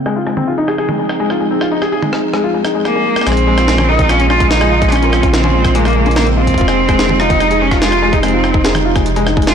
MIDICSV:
0, 0, Header, 1, 6, 480
1, 0, Start_track
1, 0, Key_signature, -5, "minor"
1, 0, Tempo, 413793
1, 1869, Time_signature, 4, 2, 24, 8
1, 11071, End_track
2, 0, Start_track
2, 0, Title_t, "Cello"
2, 0, Program_c, 0, 42
2, 3309, Note_on_c, 0, 58, 94
2, 3789, Note_on_c, 0, 60, 108
2, 3807, Note_off_c, 0, 58, 0
2, 4510, Note_on_c, 0, 63, 102
2, 4527, Note_off_c, 0, 60, 0
2, 4749, Note_on_c, 0, 61, 108
2, 4767, Note_off_c, 0, 63, 0
2, 4982, Note_off_c, 0, 61, 0
2, 4989, Note_on_c, 0, 65, 110
2, 5212, Note_off_c, 0, 65, 0
2, 5229, Note_on_c, 0, 63, 107
2, 5709, Note_on_c, 0, 61, 110
2, 5726, Note_off_c, 0, 63, 0
2, 6182, Note_off_c, 0, 61, 0
2, 6189, Note_on_c, 0, 60, 103
2, 6669, Note_on_c, 0, 58, 99
2, 6687, Note_off_c, 0, 60, 0
2, 7142, Note_off_c, 0, 58, 0
2, 7149, Note_on_c, 0, 58, 96
2, 7257, Note_off_c, 0, 58, 0
2, 7389, Note_on_c, 0, 60, 105
2, 8349, Note_on_c, 0, 63, 105
2, 8367, Note_off_c, 0, 60, 0
2, 8830, Note_on_c, 0, 61, 94
2, 8847, Note_off_c, 0, 63, 0
2, 9063, Note_off_c, 0, 61, 0
2, 9070, Note_on_c, 0, 65, 101
2, 9429, Note_on_c, 0, 63, 89
2, 9447, Note_off_c, 0, 65, 0
2, 9542, Note_off_c, 0, 63, 0
2, 9549, Note_on_c, 0, 60, 90
2, 9995, Note_off_c, 0, 60, 0
2, 10989, Note_on_c, 0, 65, 106
2, 11071, Note_off_c, 0, 65, 0
2, 11071, End_track
3, 0, Start_track
3, 0, Title_t, "Felt piano"
3, 0, Program_c, 1, 0
3, 69, Note_on_c, 1, 56, 93
3, 161, Note_off_c, 1, 56, 0
3, 189, Note_on_c, 1, 65, 70
3, 303, Note_off_c, 1, 65, 0
3, 309, Note_on_c, 1, 56, 72
3, 364, Note_off_c, 1, 56, 0
3, 429, Note_on_c, 1, 60, 81
3, 521, Note_off_c, 1, 60, 0
3, 549, Note_on_c, 1, 65, 74
3, 604, Note_off_c, 1, 65, 0
3, 669, Note_on_c, 1, 63, 99
3, 761, Note_off_c, 1, 63, 0
3, 788, Note_on_c, 1, 68, 95
3, 844, Note_off_c, 1, 68, 0
3, 909, Note_on_c, 1, 68, 98
3, 1001, Note_off_c, 1, 68, 0
3, 1029, Note_on_c, 1, 56, 74
3, 1121, Note_off_c, 1, 56, 0
3, 1149, Note_on_c, 1, 56, 73
3, 1204, Note_off_c, 1, 56, 0
3, 1389, Note_on_c, 1, 56, 93
3, 1481, Note_off_c, 1, 56, 0
3, 1509, Note_on_c, 1, 65, 73
3, 1623, Note_off_c, 1, 65, 0
3, 1629, Note_on_c, 1, 56, 73
3, 1684, Note_off_c, 1, 56, 0
3, 1749, Note_on_c, 1, 60, 74
3, 1841, Note_off_c, 1, 60, 0
3, 1869, Note_on_c, 1, 65, 83
3, 1924, Note_off_c, 1, 65, 0
3, 1989, Note_on_c, 1, 63, 99
3, 2081, Note_off_c, 1, 63, 0
3, 2109, Note_on_c, 1, 68, 96
3, 2164, Note_off_c, 1, 68, 0
3, 2228, Note_on_c, 1, 68, 99
3, 2321, Note_off_c, 1, 68, 0
3, 2348, Note_on_c, 1, 56, 80
3, 2441, Note_off_c, 1, 56, 0
3, 2469, Note_on_c, 1, 56, 74
3, 2524, Note_off_c, 1, 56, 0
3, 2709, Note_on_c, 1, 56, 96
3, 2801, Note_off_c, 1, 56, 0
3, 2829, Note_on_c, 1, 65, 79
3, 2943, Note_off_c, 1, 65, 0
3, 2949, Note_on_c, 1, 56, 74
3, 3004, Note_off_c, 1, 56, 0
3, 3069, Note_on_c, 1, 63, 74
3, 3183, Note_off_c, 1, 63, 0
3, 3189, Note_on_c, 1, 56, 75
3, 3281, Note_off_c, 1, 56, 0
3, 3309, Note_on_c, 1, 56, 78
3, 3401, Note_off_c, 1, 56, 0
3, 3429, Note_on_c, 1, 56, 74
3, 3531, Note_off_c, 1, 56, 0
3, 3549, Note_on_c, 1, 56, 73
3, 3641, Note_off_c, 1, 56, 0
3, 3789, Note_on_c, 1, 56, 88
3, 3903, Note_off_c, 1, 56, 0
3, 4029, Note_on_c, 1, 56, 102
3, 4121, Note_off_c, 1, 56, 0
3, 4149, Note_on_c, 1, 65, 78
3, 4204, Note_off_c, 1, 65, 0
3, 4269, Note_on_c, 1, 56, 82
3, 4361, Note_off_c, 1, 56, 0
3, 4389, Note_on_c, 1, 61, 76
3, 4503, Note_off_c, 1, 61, 0
3, 4509, Note_on_c, 1, 58, 77
3, 4601, Note_off_c, 1, 58, 0
3, 4629, Note_on_c, 1, 60, 78
3, 4721, Note_off_c, 1, 60, 0
3, 4749, Note_on_c, 1, 65, 83
3, 4863, Note_off_c, 1, 65, 0
3, 4989, Note_on_c, 1, 61, 79
3, 5081, Note_off_c, 1, 61, 0
3, 5109, Note_on_c, 1, 56, 80
3, 5223, Note_off_c, 1, 56, 0
3, 5349, Note_on_c, 1, 56, 101
3, 5441, Note_off_c, 1, 56, 0
3, 5469, Note_on_c, 1, 65, 78
3, 5525, Note_off_c, 1, 65, 0
3, 5589, Note_on_c, 1, 56, 75
3, 5681, Note_off_c, 1, 56, 0
3, 5709, Note_on_c, 1, 61, 85
3, 5823, Note_off_c, 1, 61, 0
3, 5829, Note_on_c, 1, 58, 79
3, 5922, Note_off_c, 1, 58, 0
3, 5949, Note_on_c, 1, 60, 76
3, 6042, Note_off_c, 1, 60, 0
3, 6069, Note_on_c, 1, 65, 76
3, 6183, Note_off_c, 1, 65, 0
3, 6309, Note_on_c, 1, 61, 75
3, 6401, Note_off_c, 1, 61, 0
3, 6429, Note_on_c, 1, 56, 78
3, 6543, Note_off_c, 1, 56, 0
3, 6669, Note_on_c, 1, 56, 107
3, 6761, Note_off_c, 1, 56, 0
3, 6789, Note_on_c, 1, 65, 76
3, 6844, Note_off_c, 1, 65, 0
3, 6909, Note_on_c, 1, 56, 80
3, 7001, Note_off_c, 1, 56, 0
3, 7029, Note_on_c, 1, 61, 77
3, 7143, Note_off_c, 1, 61, 0
3, 7149, Note_on_c, 1, 58, 83
3, 7241, Note_off_c, 1, 58, 0
3, 7269, Note_on_c, 1, 60, 76
3, 7361, Note_off_c, 1, 60, 0
3, 7389, Note_on_c, 1, 65, 77
3, 7503, Note_off_c, 1, 65, 0
3, 7629, Note_on_c, 1, 65, 87
3, 7721, Note_off_c, 1, 65, 0
3, 7749, Note_on_c, 1, 56, 76
3, 7863, Note_off_c, 1, 56, 0
3, 7989, Note_on_c, 1, 56, 104
3, 8081, Note_off_c, 1, 56, 0
3, 8109, Note_on_c, 1, 68, 81
3, 8164, Note_off_c, 1, 68, 0
3, 8229, Note_on_c, 1, 56, 77
3, 8321, Note_off_c, 1, 56, 0
3, 8348, Note_on_c, 1, 65, 79
3, 8463, Note_off_c, 1, 65, 0
3, 8468, Note_on_c, 1, 60, 78
3, 8561, Note_off_c, 1, 60, 0
3, 8588, Note_on_c, 1, 63, 83
3, 8681, Note_off_c, 1, 63, 0
3, 8708, Note_on_c, 1, 68, 78
3, 8822, Note_off_c, 1, 68, 0
3, 8948, Note_on_c, 1, 65, 77
3, 9041, Note_off_c, 1, 65, 0
3, 9068, Note_on_c, 1, 56, 83
3, 9183, Note_off_c, 1, 56, 0
3, 9308, Note_on_c, 1, 56, 103
3, 9401, Note_off_c, 1, 56, 0
3, 9428, Note_on_c, 1, 68, 79
3, 9484, Note_off_c, 1, 68, 0
3, 9549, Note_on_c, 1, 56, 88
3, 9641, Note_off_c, 1, 56, 0
3, 9669, Note_on_c, 1, 65, 76
3, 9783, Note_off_c, 1, 65, 0
3, 9789, Note_on_c, 1, 60, 77
3, 9881, Note_off_c, 1, 60, 0
3, 9909, Note_on_c, 1, 63, 77
3, 10001, Note_off_c, 1, 63, 0
3, 10028, Note_on_c, 1, 68, 84
3, 10143, Note_off_c, 1, 68, 0
3, 10269, Note_on_c, 1, 65, 76
3, 10361, Note_off_c, 1, 65, 0
3, 10389, Note_on_c, 1, 56, 76
3, 10503, Note_off_c, 1, 56, 0
3, 10628, Note_on_c, 1, 56, 102
3, 10721, Note_off_c, 1, 56, 0
3, 10749, Note_on_c, 1, 63, 78
3, 10863, Note_off_c, 1, 63, 0
3, 10869, Note_on_c, 1, 56, 78
3, 10961, Note_off_c, 1, 56, 0
3, 10989, Note_on_c, 1, 56, 86
3, 11071, Note_off_c, 1, 56, 0
3, 11071, End_track
4, 0, Start_track
4, 0, Title_t, "Ambient pad"
4, 0, Program_c, 2, 92
4, 0, Note_on_c, 2, 53, 81
4, 0, Note_on_c, 2, 60, 74
4, 0, Note_on_c, 2, 63, 76
4, 0, Note_on_c, 2, 68, 91
4, 3743, Note_off_c, 2, 60, 0
4, 3751, Note_off_c, 2, 53, 0
4, 3751, Note_off_c, 2, 63, 0
4, 3751, Note_off_c, 2, 68, 0
4, 3789, Note_on_c, 2, 49, 86
4, 3789, Note_on_c, 2, 56, 76
4, 3789, Note_on_c, 2, 58, 78
4, 3789, Note_on_c, 2, 65, 93
4, 7591, Note_off_c, 2, 49, 0
4, 7591, Note_off_c, 2, 58, 0
4, 7591, Note_off_c, 2, 65, 0
4, 7629, Note_on_c, 2, 48, 84
4, 7629, Note_on_c, 2, 53, 76
4, 7629, Note_on_c, 2, 63, 93
4, 11071, Note_off_c, 2, 48, 0
4, 11071, Note_off_c, 2, 53, 0
4, 11071, Note_off_c, 2, 56, 0
4, 11071, Note_off_c, 2, 63, 0
4, 11071, End_track
5, 0, Start_track
5, 0, Title_t, "Sub bass"
5, 0, Program_c, 3, 38
5, 3789, Note_on_c, 3, 34, 93
5, 7605, Note_off_c, 3, 34, 0
5, 7629, Note_on_c, 3, 29, 92
5, 11071, Note_off_c, 3, 29, 0
5, 11071, End_track
6, 0, Start_track
6, 0, Title_t, "Drums"
6, 69, Note_on_c, 9, 37, 74
6, 185, Note_off_c, 9, 37, 0
6, 309, Note_on_c, 9, 37, 48
6, 425, Note_off_c, 9, 37, 0
6, 429, Note_on_c, 9, 45, 75
6, 545, Note_off_c, 9, 45, 0
6, 789, Note_on_c, 9, 37, 75
6, 905, Note_off_c, 9, 37, 0
6, 909, Note_on_c, 9, 37, 48
6, 1025, Note_off_c, 9, 37, 0
6, 1029, Note_on_c, 9, 45, 75
6, 1145, Note_off_c, 9, 45, 0
6, 1269, Note_on_c, 9, 37, 76
6, 1385, Note_off_c, 9, 37, 0
6, 1509, Note_on_c, 9, 37, 49
6, 1625, Note_off_c, 9, 37, 0
6, 1869, Note_on_c, 9, 37, 73
6, 1985, Note_off_c, 9, 37, 0
6, 2109, Note_on_c, 9, 37, 49
6, 2225, Note_off_c, 9, 37, 0
6, 2349, Note_on_c, 9, 45, 76
6, 2465, Note_off_c, 9, 45, 0
6, 2469, Note_on_c, 9, 37, 71
6, 2585, Note_off_c, 9, 37, 0
6, 2709, Note_on_c, 9, 37, 49
6, 2825, Note_off_c, 9, 37, 0
6, 3069, Note_on_c, 9, 37, 71
6, 3185, Note_off_c, 9, 37, 0
6, 3309, Note_on_c, 9, 37, 49
6, 3425, Note_off_c, 9, 37, 0
6, 3669, Note_on_c, 9, 37, 70
6, 3729, Note_off_c, 9, 37, 0
6, 3729, Note_on_c, 9, 37, 56
6, 3789, Note_off_c, 9, 37, 0
6, 3789, Note_on_c, 9, 37, 56
6, 3789, Note_on_c, 9, 42, 70
6, 3849, Note_off_c, 9, 37, 0
6, 3849, Note_on_c, 9, 37, 40
6, 3905, Note_off_c, 9, 42, 0
6, 3909, Note_on_c, 9, 42, 37
6, 3965, Note_off_c, 9, 37, 0
6, 4025, Note_off_c, 9, 42, 0
6, 4149, Note_on_c, 9, 37, 85
6, 4149, Note_on_c, 9, 42, 56
6, 4265, Note_off_c, 9, 37, 0
6, 4265, Note_off_c, 9, 42, 0
6, 4269, Note_on_c, 9, 38, 122
6, 4269, Note_on_c, 9, 42, 71
6, 4385, Note_off_c, 9, 38, 0
6, 4385, Note_off_c, 9, 42, 0
6, 4389, Note_on_c, 9, 37, 56
6, 4389, Note_on_c, 9, 45, 92
6, 4505, Note_off_c, 9, 37, 0
6, 4505, Note_off_c, 9, 45, 0
6, 4629, Note_on_c, 9, 36, 106
6, 4629, Note_on_c, 9, 42, 57
6, 4629, Note_on_c, 9, 45, 86
6, 4745, Note_off_c, 9, 36, 0
6, 4745, Note_off_c, 9, 42, 0
6, 4745, Note_off_c, 9, 45, 0
6, 4749, Note_on_c, 9, 37, 82
6, 4749, Note_on_c, 9, 42, 69
6, 4865, Note_off_c, 9, 37, 0
6, 4865, Note_off_c, 9, 42, 0
6, 4869, Note_on_c, 9, 42, 39
6, 4985, Note_off_c, 9, 42, 0
6, 4989, Note_on_c, 9, 37, 55
6, 5105, Note_off_c, 9, 37, 0
6, 5109, Note_on_c, 9, 36, 118
6, 5109, Note_on_c, 9, 42, 57
6, 5225, Note_off_c, 9, 36, 0
6, 5225, Note_off_c, 9, 42, 0
6, 5229, Note_on_c, 9, 38, 126
6, 5229, Note_on_c, 9, 42, 71
6, 5345, Note_off_c, 9, 38, 0
6, 5345, Note_off_c, 9, 42, 0
6, 5349, Note_on_c, 9, 37, 85
6, 5465, Note_off_c, 9, 37, 0
6, 5589, Note_on_c, 9, 36, 119
6, 5589, Note_on_c, 9, 37, 25
6, 5589, Note_on_c, 9, 42, 58
6, 5669, Note_off_c, 9, 37, 0
6, 5669, Note_on_c, 9, 37, 35
6, 5705, Note_off_c, 9, 36, 0
6, 5705, Note_off_c, 9, 42, 0
6, 5709, Note_on_c, 9, 42, 72
6, 5749, Note_off_c, 9, 37, 0
6, 5749, Note_on_c, 9, 37, 46
6, 5825, Note_off_c, 9, 42, 0
6, 5829, Note_on_c, 9, 42, 39
6, 5865, Note_off_c, 9, 37, 0
6, 5945, Note_off_c, 9, 42, 0
6, 5949, Note_on_c, 9, 37, 82
6, 6065, Note_off_c, 9, 37, 0
6, 6069, Note_on_c, 9, 36, 113
6, 6069, Note_on_c, 9, 42, 56
6, 6185, Note_off_c, 9, 36, 0
6, 6185, Note_off_c, 9, 42, 0
6, 6189, Note_on_c, 9, 37, 54
6, 6189, Note_on_c, 9, 38, 126
6, 6189, Note_on_c, 9, 42, 70
6, 6305, Note_off_c, 9, 37, 0
6, 6305, Note_off_c, 9, 38, 0
6, 6305, Note_off_c, 9, 42, 0
6, 6309, Note_on_c, 9, 45, 88
6, 6425, Note_off_c, 9, 45, 0
6, 6549, Note_on_c, 9, 36, 123
6, 6549, Note_on_c, 9, 37, 84
6, 6549, Note_on_c, 9, 42, 59
6, 6665, Note_off_c, 9, 36, 0
6, 6665, Note_off_c, 9, 37, 0
6, 6665, Note_off_c, 9, 42, 0
6, 6669, Note_on_c, 9, 42, 69
6, 6785, Note_off_c, 9, 42, 0
6, 6789, Note_on_c, 9, 37, 54
6, 6789, Note_on_c, 9, 42, 37
6, 6819, Note_off_c, 9, 42, 0
6, 6819, Note_on_c, 9, 42, 30
6, 6849, Note_off_c, 9, 42, 0
6, 6849, Note_on_c, 9, 42, 25
6, 6879, Note_off_c, 9, 42, 0
6, 6879, Note_on_c, 9, 42, 21
6, 6905, Note_off_c, 9, 37, 0
6, 6995, Note_off_c, 9, 42, 0
6, 7029, Note_on_c, 9, 42, 26
6, 7089, Note_off_c, 9, 42, 0
6, 7089, Note_on_c, 9, 42, 33
6, 7149, Note_off_c, 9, 42, 0
6, 7149, Note_on_c, 9, 37, 83
6, 7149, Note_on_c, 9, 38, 125
6, 7149, Note_on_c, 9, 42, 71
6, 7209, Note_off_c, 9, 42, 0
6, 7209, Note_on_c, 9, 42, 47
6, 7265, Note_off_c, 9, 37, 0
6, 7265, Note_off_c, 9, 38, 0
6, 7269, Note_off_c, 9, 42, 0
6, 7269, Note_on_c, 9, 42, 39
6, 7385, Note_off_c, 9, 42, 0
6, 7509, Note_on_c, 9, 36, 49
6, 7509, Note_on_c, 9, 42, 56
6, 7589, Note_off_c, 9, 36, 0
6, 7589, Note_on_c, 9, 36, 66
6, 7625, Note_off_c, 9, 42, 0
6, 7629, Note_on_c, 9, 42, 71
6, 7669, Note_off_c, 9, 36, 0
6, 7669, Note_on_c, 9, 36, 89
6, 7745, Note_off_c, 9, 42, 0
6, 7749, Note_on_c, 9, 37, 78
6, 7749, Note_on_c, 9, 42, 37
6, 7785, Note_off_c, 9, 36, 0
6, 7865, Note_off_c, 9, 37, 0
6, 7865, Note_off_c, 9, 42, 0
6, 7989, Note_on_c, 9, 36, 126
6, 7989, Note_on_c, 9, 37, 54
6, 7989, Note_on_c, 9, 42, 56
6, 8105, Note_off_c, 9, 36, 0
6, 8105, Note_off_c, 9, 37, 0
6, 8105, Note_off_c, 9, 42, 0
6, 8109, Note_on_c, 9, 38, 126
6, 8109, Note_on_c, 9, 42, 67
6, 8225, Note_off_c, 9, 38, 0
6, 8225, Note_off_c, 9, 42, 0
6, 8229, Note_on_c, 9, 45, 87
6, 8345, Note_off_c, 9, 45, 0
6, 8349, Note_on_c, 9, 37, 80
6, 8465, Note_off_c, 9, 37, 0
6, 8469, Note_on_c, 9, 36, 127
6, 8469, Note_on_c, 9, 42, 59
6, 8469, Note_on_c, 9, 45, 84
6, 8585, Note_off_c, 9, 36, 0
6, 8585, Note_off_c, 9, 42, 0
6, 8585, Note_off_c, 9, 45, 0
6, 8589, Note_on_c, 9, 37, 52
6, 8589, Note_on_c, 9, 42, 70
6, 8705, Note_off_c, 9, 37, 0
6, 8705, Note_off_c, 9, 42, 0
6, 8709, Note_on_c, 9, 42, 39
6, 8825, Note_off_c, 9, 42, 0
6, 8949, Note_on_c, 9, 36, 110
6, 8949, Note_on_c, 9, 37, 79
6, 8949, Note_on_c, 9, 42, 55
6, 9065, Note_off_c, 9, 36, 0
6, 9065, Note_off_c, 9, 37, 0
6, 9065, Note_off_c, 9, 42, 0
6, 9069, Note_on_c, 9, 38, 127
6, 9069, Note_on_c, 9, 42, 70
6, 9185, Note_off_c, 9, 38, 0
6, 9185, Note_off_c, 9, 42, 0
6, 9189, Note_on_c, 9, 37, 52
6, 9189, Note_on_c, 9, 42, 38
6, 9305, Note_off_c, 9, 37, 0
6, 9305, Note_off_c, 9, 42, 0
6, 9429, Note_on_c, 9, 36, 125
6, 9429, Note_on_c, 9, 42, 55
6, 9545, Note_off_c, 9, 36, 0
6, 9545, Note_off_c, 9, 42, 0
6, 9549, Note_on_c, 9, 37, 79
6, 9549, Note_on_c, 9, 42, 66
6, 9609, Note_off_c, 9, 42, 0
6, 9609, Note_on_c, 9, 42, 37
6, 9665, Note_off_c, 9, 37, 0
6, 9725, Note_off_c, 9, 42, 0
6, 9789, Note_on_c, 9, 37, 54
6, 9905, Note_off_c, 9, 37, 0
6, 9909, Note_on_c, 9, 36, 126
6, 10025, Note_off_c, 9, 36, 0
6, 10029, Note_on_c, 9, 38, 123
6, 10029, Note_on_c, 9, 42, 65
6, 10145, Note_off_c, 9, 38, 0
6, 10145, Note_off_c, 9, 42, 0
6, 10149, Note_on_c, 9, 37, 74
6, 10149, Note_on_c, 9, 42, 37
6, 10149, Note_on_c, 9, 45, 90
6, 10265, Note_off_c, 9, 37, 0
6, 10265, Note_off_c, 9, 42, 0
6, 10265, Note_off_c, 9, 45, 0
6, 10389, Note_on_c, 9, 36, 109
6, 10389, Note_on_c, 9, 37, 53
6, 10389, Note_on_c, 9, 42, 54
6, 10505, Note_off_c, 9, 36, 0
6, 10505, Note_off_c, 9, 37, 0
6, 10505, Note_off_c, 9, 42, 0
6, 10509, Note_on_c, 9, 42, 63
6, 10625, Note_off_c, 9, 42, 0
6, 10629, Note_on_c, 9, 42, 38
6, 10745, Note_off_c, 9, 42, 0
6, 10749, Note_on_c, 9, 37, 77
6, 10865, Note_off_c, 9, 37, 0
6, 10869, Note_on_c, 9, 36, 127
6, 10929, Note_on_c, 9, 42, 55
6, 10985, Note_off_c, 9, 36, 0
6, 10989, Note_off_c, 9, 42, 0
6, 10989, Note_on_c, 9, 37, 52
6, 10989, Note_on_c, 9, 38, 126
6, 10989, Note_on_c, 9, 42, 68
6, 11071, Note_off_c, 9, 37, 0
6, 11071, Note_off_c, 9, 38, 0
6, 11071, Note_off_c, 9, 42, 0
6, 11071, End_track
0, 0, End_of_file